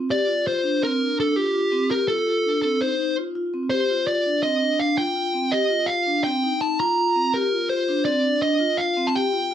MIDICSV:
0, 0, Header, 1, 3, 480
1, 0, Start_track
1, 0, Key_signature, -2, "minor"
1, 0, Tempo, 362319
1, 118, Time_signature, 5, 2, 24, 8
1, 12643, End_track
2, 0, Start_track
2, 0, Title_t, "Lead electric guitar"
2, 0, Program_c, 0, 29
2, 146, Note_on_c, 0, 74, 93
2, 622, Note_off_c, 0, 74, 0
2, 627, Note_on_c, 0, 72, 80
2, 1060, Note_off_c, 0, 72, 0
2, 1103, Note_on_c, 0, 70, 80
2, 1538, Note_off_c, 0, 70, 0
2, 1589, Note_on_c, 0, 69, 76
2, 1803, Note_off_c, 0, 69, 0
2, 1803, Note_on_c, 0, 67, 72
2, 2525, Note_off_c, 0, 67, 0
2, 2530, Note_on_c, 0, 70, 73
2, 2751, Note_off_c, 0, 70, 0
2, 2756, Note_on_c, 0, 69, 75
2, 3455, Note_off_c, 0, 69, 0
2, 3471, Note_on_c, 0, 69, 66
2, 3721, Note_off_c, 0, 69, 0
2, 3721, Note_on_c, 0, 72, 70
2, 4165, Note_off_c, 0, 72, 0
2, 4902, Note_on_c, 0, 72, 73
2, 5392, Note_off_c, 0, 72, 0
2, 5397, Note_on_c, 0, 74, 71
2, 5861, Note_off_c, 0, 74, 0
2, 5866, Note_on_c, 0, 75, 78
2, 6353, Note_on_c, 0, 77, 80
2, 6365, Note_off_c, 0, 75, 0
2, 6590, Note_off_c, 0, 77, 0
2, 6595, Note_on_c, 0, 79, 84
2, 7307, Note_on_c, 0, 75, 88
2, 7336, Note_off_c, 0, 79, 0
2, 7768, Note_on_c, 0, 77, 81
2, 7805, Note_off_c, 0, 75, 0
2, 8227, Note_off_c, 0, 77, 0
2, 8266, Note_on_c, 0, 79, 83
2, 8757, Note_on_c, 0, 81, 93
2, 8764, Note_off_c, 0, 79, 0
2, 8979, Note_off_c, 0, 81, 0
2, 9009, Note_on_c, 0, 82, 90
2, 9720, Note_on_c, 0, 70, 85
2, 9744, Note_off_c, 0, 82, 0
2, 10165, Note_off_c, 0, 70, 0
2, 10192, Note_on_c, 0, 72, 76
2, 10659, Note_off_c, 0, 72, 0
2, 10665, Note_on_c, 0, 74, 79
2, 11151, Note_off_c, 0, 74, 0
2, 11157, Note_on_c, 0, 75, 87
2, 11623, Note_on_c, 0, 77, 76
2, 11652, Note_off_c, 0, 75, 0
2, 12017, Note_on_c, 0, 81, 58
2, 12030, Note_off_c, 0, 77, 0
2, 12114, Note_off_c, 0, 81, 0
2, 12129, Note_on_c, 0, 79, 78
2, 12643, Note_off_c, 0, 79, 0
2, 12643, End_track
3, 0, Start_track
3, 0, Title_t, "Vibraphone"
3, 0, Program_c, 1, 11
3, 125, Note_on_c, 1, 67, 76
3, 262, Note_off_c, 1, 67, 0
3, 357, Note_on_c, 1, 65, 58
3, 497, Note_off_c, 1, 65, 0
3, 600, Note_on_c, 1, 65, 60
3, 739, Note_off_c, 1, 65, 0
3, 841, Note_on_c, 1, 62, 70
3, 980, Note_off_c, 1, 62, 0
3, 1083, Note_on_c, 1, 60, 69
3, 1221, Note_off_c, 1, 60, 0
3, 1321, Note_on_c, 1, 62, 60
3, 1460, Note_off_c, 1, 62, 0
3, 1563, Note_on_c, 1, 62, 74
3, 1701, Note_off_c, 1, 62, 0
3, 1805, Note_on_c, 1, 65, 62
3, 1942, Note_off_c, 1, 65, 0
3, 2037, Note_on_c, 1, 65, 65
3, 2177, Note_off_c, 1, 65, 0
3, 2280, Note_on_c, 1, 60, 67
3, 2419, Note_off_c, 1, 60, 0
3, 2522, Note_on_c, 1, 67, 79
3, 2660, Note_off_c, 1, 67, 0
3, 2764, Note_on_c, 1, 65, 60
3, 2901, Note_off_c, 1, 65, 0
3, 3005, Note_on_c, 1, 65, 61
3, 3142, Note_off_c, 1, 65, 0
3, 3253, Note_on_c, 1, 62, 68
3, 3388, Note_off_c, 1, 62, 0
3, 3488, Note_on_c, 1, 60, 62
3, 3624, Note_off_c, 1, 60, 0
3, 3727, Note_on_c, 1, 63, 60
3, 3863, Note_off_c, 1, 63, 0
3, 3966, Note_on_c, 1, 63, 69
3, 4103, Note_off_c, 1, 63, 0
3, 4211, Note_on_c, 1, 65, 58
3, 4346, Note_off_c, 1, 65, 0
3, 4442, Note_on_c, 1, 65, 65
3, 4580, Note_off_c, 1, 65, 0
3, 4684, Note_on_c, 1, 60, 60
3, 4821, Note_off_c, 1, 60, 0
3, 4926, Note_on_c, 1, 67, 72
3, 5063, Note_off_c, 1, 67, 0
3, 5170, Note_on_c, 1, 65, 59
3, 5305, Note_off_c, 1, 65, 0
3, 5405, Note_on_c, 1, 65, 62
3, 5542, Note_off_c, 1, 65, 0
3, 5647, Note_on_c, 1, 62, 63
3, 5783, Note_off_c, 1, 62, 0
3, 5884, Note_on_c, 1, 60, 65
3, 6021, Note_off_c, 1, 60, 0
3, 6123, Note_on_c, 1, 62, 62
3, 6260, Note_off_c, 1, 62, 0
3, 6356, Note_on_c, 1, 62, 73
3, 6495, Note_off_c, 1, 62, 0
3, 6596, Note_on_c, 1, 65, 65
3, 6735, Note_off_c, 1, 65, 0
3, 6833, Note_on_c, 1, 65, 59
3, 6973, Note_off_c, 1, 65, 0
3, 7072, Note_on_c, 1, 60, 60
3, 7212, Note_off_c, 1, 60, 0
3, 7320, Note_on_c, 1, 67, 72
3, 7458, Note_off_c, 1, 67, 0
3, 7553, Note_on_c, 1, 65, 66
3, 7693, Note_off_c, 1, 65, 0
3, 7798, Note_on_c, 1, 65, 66
3, 7936, Note_off_c, 1, 65, 0
3, 8036, Note_on_c, 1, 62, 73
3, 8175, Note_off_c, 1, 62, 0
3, 8282, Note_on_c, 1, 60, 68
3, 8419, Note_off_c, 1, 60, 0
3, 8524, Note_on_c, 1, 63, 64
3, 8661, Note_off_c, 1, 63, 0
3, 8761, Note_on_c, 1, 63, 70
3, 8899, Note_off_c, 1, 63, 0
3, 9007, Note_on_c, 1, 65, 68
3, 9143, Note_off_c, 1, 65, 0
3, 9246, Note_on_c, 1, 65, 64
3, 9383, Note_off_c, 1, 65, 0
3, 9479, Note_on_c, 1, 60, 64
3, 9618, Note_off_c, 1, 60, 0
3, 9728, Note_on_c, 1, 67, 78
3, 9864, Note_off_c, 1, 67, 0
3, 9968, Note_on_c, 1, 65, 64
3, 10104, Note_off_c, 1, 65, 0
3, 10204, Note_on_c, 1, 65, 66
3, 10341, Note_off_c, 1, 65, 0
3, 10446, Note_on_c, 1, 62, 73
3, 10582, Note_off_c, 1, 62, 0
3, 10684, Note_on_c, 1, 60, 74
3, 10821, Note_off_c, 1, 60, 0
3, 10911, Note_on_c, 1, 62, 65
3, 11052, Note_off_c, 1, 62, 0
3, 11155, Note_on_c, 1, 62, 75
3, 11295, Note_off_c, 1, 62, 0
3, 11391, Note_on_c, 1, 65, 66
3, 11532, Note_off_c, 1, 65, 0
3, 11634, Note_on_c, 1, 65, 72
3, 11775, Note_off_c, 1, 65, 0
3, 11884, Note_on_c, 1, 60, 69
3, 12022, Note_off_c, 1, 60, 0
3, 12120, Note_on_c, 1, 67, 75
3, 12259, Note_off_c, 1, 67, 0
3, 12357, Note_on_c, 1, 65, 63
3, 12497, Note_off_c, 1, 65, 0
3, 12601, Note_on_c, 1, 65, 69
3, 12643, Note_off_c, 1, 65, 0
3, 12643, End_track
0, 0, End_of_file